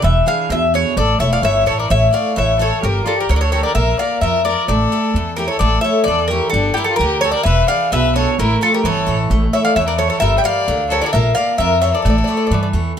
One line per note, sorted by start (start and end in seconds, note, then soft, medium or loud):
0.02 0.20 E1 loud
0.02 0.48 E3 medium
0.02 0.26 E5 medium
0.26 0.64 D4 soft
0.26 0.64 E4 soft
0.26 0.64 G#4 medium
0.26 0.49 F5 loud
0.49 0.82 E2 medium
0.49 0.95 B2 medium
0.49 0.75 E5 medium
0.74 0.92 D4 soft
0.74 0.93 E4 soft
0.74 0.93 G#4 medium
0.74 0.97 C#5 loud
0.97 1.13 A1 loud
0.97 1.42 A3 medium
0.97 1.19 A4 medium
0.97 1.19 D5 medium
1.19 1.41 E1 medium
1.19 1.58 E4 soft
1.19 1.58 A4 soft
1.19 1.32 C#5 medium
1.19 1.59 C#5 medium
1.19 1.32 E5 loud
1.33 1.43 D5 medium
1.33 1.43 F5 medium
1.42 1.64 G1 medium
1.42 1.88 E3 medium
1.42 1.66 C#5 medium
1.42 1.66 E5 medium
1.66 1.88 A1 medium
1.66 2.04 E4 soft
1.66 2.04 A4 soft
1.66 1.79 A4 medium
1.66 1.78 C#5 medium
1.66 2.04 C#5 soft
1.79 1.90 A#4 medium
1.79 1.90 D5 medium
1.90 2.06 A1 medium
1.90 2.35 A3 medium
1.90 2.12 C#5 medium
1.90 2.12 E5 medium
2.13 2.50 E4 soft
2.13 2.50 A4 soft
2.13 2.51 C#5 medium
2.13 2.35 D5 medium
2.13 2.38 F5 loud
2.36 2.70 A1 medium
2.36 2.81 E3 medium
2.36 2.59 C#5 medium
2.36 2.61 E5 medium
2.59 2.78 E4 soft
2.59 2.78 A4 soft
2.59 2.82 A4 medium
2.59 2.79 C#5 medium
2.59 2.85 C#5 medium
2.83 2.99 G1 loud
2.83 3.06 G3 medium
2.83 3.05 G4 medium
2.83 3.07 A#4 medium
3.05 3.16 F4 medium
3.05 3.43 G4 soft
3.05 3.18 A4 medium
3.05 3.43 A#4 soft
3.05 3.43 D5 medium
3.19 3.29 G4 medium
3.19 3.31 A#4 medium
3.29 3.62 D2 medium
3.29 3.74 D3 medium
3.29 3.36 A#4 medium
3.29 3.36 C#5 medium
3.36 3.41 A#4 medium
3.36 3.41 D5 medium
3.41 3.53 A4 medium
3.41 3.51 C#5 medium
3.52 3.71 G4 soft
3.52 3.64 A4 medium
3.52 3.71 A#4 soft
3.52 3.63 C#5 medium
3.52 3.71 D5 soft
3.63 3.76 A#4 medium
3.63 3.74 D5 medium
3.75 3.91 A#1 medium
3.75 4.20 A#3 medium
3.75 3.98 A#4 medium
3.75 3.97 E5 medium
3.99 4.37 F4 soft
3.99 4.37 A#4 soft
3.99 4.21 D5 medium
3.99 4.37 D5 soft
3.99 4.21 F5 medium
4.21 4.54 F2 medium
4.21 4.68 F3 medium
4.21 4.45 A#4 medium
4.21 4.43 E5 medium
4.45 4.64 F4 soft
4.45 4.64 A#4 soft
4.45 4.68 A#4 medium
4.45 4.67 D5 medium
4.45 4.64 D5 medium
4.68 4.84 A1 medium
4.68 5.14 A3 medium
4.68 5.35 A4 medium
4.68 5.34 D5 medium
4.92 5.29 E4 medium
4.92 5.29 A4 soft
4.92 5.30 E5 soft
5.14 5.47 E2 medium
5.14 5.60 E3 medium
5.36 5.57 E4 soft
5.36 5.49 G4 medium
5.36 5.57 A4 soft
5.36 5.48 A#4 medium
5.36 5.57 C#5 medium
5.48 5.61 A4 medium
5.48 5.59 C#5 medium
5.59 5.77 A1 medium
5.59 6.06 A3 medium
5.59 5.83 A4 medium
5.59 5.81 D5 medium
5.81 6.21 E4 soft
5.81 6.22 A4 soft
5.81 6.03 E5 medium
5.85 6.06 C#5 medium
5.85 6.22 C#5 soft
6.04 6.39 E2 medium
6.04 6.29 D5 medium
6.08 6.52 E3 medium
6.08 6.29 A4 medium
6.28 6.49 E4 medium
6.28 6.49 A4 soft
6.28 6.49 A#4 medium
6.28 6.49 C#5 medium
6.32 6.53 G4 medium
6.50 6.69 G1 medium
6.50 6.75 D4 medium
6.50 6.75 A4 medium
6.54 6.76 G3 medium
6.74 6.88 E4 medium
6.74 6.86 G4 medium
6.74 7.14 G4 medium
6.74 7.14 A#4 soft
6.78 7.14 D5 medium
6.84 6.96 A4 medium
6.90 7.00 F4 medium
6.96 7.32 D2 medium
6.96 7.22 A#4 loud
7.01 7.45 D3 medium
7.01 7.22 G4 medium
7.21 7.42 G4 medium
7.21 7.34 A4 medium
7.21 7.42 A#4 soft
7.21 7.31 C#5 medium
7.21 7.42 D5 medium
7.31 7.43 D5 medium
7.36 7.46 A#4 medium
7.43 7.62 E1 medium
7.43 7.91 E3 medium
7.43 7.68 B4 medium
7.43 7.66 E5 loud
7.68 8.05 D4 soft
7.68 8.06 E4 soft
7.68 8.06 G#4 medium
7.68 7.91 D5 medium
7.68 7.90 F5 loud
7.92 8.24 B1 medium
7.92 8.37 B2 medium
7.92 8.14 B4 medium
7.92 8.15 E5 loud
8.16 8.34 D4 soft
8.16 8.34 E4 soft
8.16 8.34 G#4 medium
8.16 8.37 A4 medium
8.16 8.37 C#5 medium
8.39 8.54 A1 medium
8.39 8.83 A3 medium
8.39 8.61 E4 medium
8.39 8.62 A#4 medium
8.61 8.98 E4 soft
8.61 8.73 F4 medium
8.61 8.98 A4 soft
8.61 8.74 A4 medium
8.61 8.98 C#5 medium
8.74 8.84 G4 medium
8.74 8.85 A#4 medium
8.84 9.05 G1 medium
8.84 9.29 E3 medium
8.84 9.17 A4 medium
8.84 9.17 C#5 medium
9.06 9.27 A1 medium
9.06 9.43 E4 soft
9.06 9.44 A4 soft
9.06 9.44 C#5 medium
9.30 9.46 A1 medium
9.30 9.75 A3 medium
9.53 9.90 E4 soft
9.53 9.90 A4 soft
9.53 9.64 C#5 medium
9.53 9.91 C#5 soft
9.53 9.64 E5 medium
9.65 9.75 D5 medium
9.65 9.75 F5 medium
9.76 10.08 E2 medium
9.76 10.21 E3 medium
9.76 9.87 C#5 medium
9.76 9.86 E5 medium
9.87 9.97 A#4 medium
9.87 9.98 D5 medium
9.98 10.17 E4 soft
9.98 10.09 A4 medium
9.98 10.17 A4 soft
9.98 10.09 C#5 medium
9.98 10.17 C#5 soft
10.09 10.20 A4 medium
10.09 10.19 C#5 medium
10.20 10.38 G1 medium
10.20 10.66 G3 medium
10.20 10.36 A#4 medium
10.20 10.37 E5 loud
10.38 10.44 E5 medium
10.38 10.45 G5 medium
10.44 10.81 G4 soft
10.44 10.81 A#4 soft
10.44 10.87 D5 medium
10.44 10.81 D5 medium
10.44 10.92 F5 loud
10.68 11.00 D2 medium
10.68 11.12 D3 medium
10.90 11.08 G4 soft
10.90 11.01 A4 medium
10.90 11.09 A#4 soft
10.90 11.03 C#5 medium
10.90 11.09 D5 medium
11.02 11.07 A4 medium
11.02 11.04 A#4 medium
11.02 11.07 C#5 medium
11.02 11.04 D5 medium
11.06 11.13 A#4 medium
11.06 11.12 D5 medium
11.13 11.29 A#1 loud
11.13 11.58 A#3 medium
11.13 11.34 A#4 medium
11.13 11.34 E5 medium
11.35 11.73 F4 soft
11.35 11.73 A#4 soft
11.35 11.58 D5 medium
11.35 11.73 D5 medium
11.35 11.56 F5 loud
11.58 11.91 F2 medium
11.58 12.04 F3 medium
11.58 11.81 A#4 medium
11.58 11.80 E5 medium
11.82 12.00 F4 medium
11.82 12.01 A#4 soft
11.82 11.93 C#5 medium
11.82 12.01 D5 medium
11.82 11.93 E5 medium
11.95 12.70 A4 medium
11.95 12.00 D5 medium
12.02 12.21 A1 loud
12.02 12.49 A3 medium
12.02 12.08 D5 soft
12.10 12.15 D5 medium
12.18 12.23 D5 soft
12.24 12.64 E4 soft
12.24 12.64 A4 soft
12.24 12.29 D5 soft
12.29 12.64 C#5 soft
12.29 12.36 D5 soft
12.37 12.43 D5 soft
12.47 12.71 G2 medium
12.47 12.52 D5 soft
12.51 12.95 E3 medium
12.51 12.59 D5 soft
12.63 12.67 D5 soft
12.73 12.93 E2 medium
12.73 12.91 E4 soft
12.73 12.92 A4 soft
12.73 12.92 C#5 medium